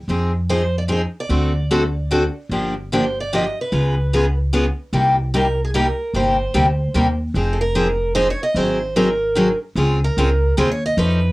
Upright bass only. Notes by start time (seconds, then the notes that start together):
0.08 F2
1.29 D2
2.49 G1
3.72 C#2
4.93 C2
6.14 G1
6.54 D2
6.94 D#2
7.34 F1
8.55 G#1
9.75 C#2
10.17 C#2
10.58 D#2
10.97 F2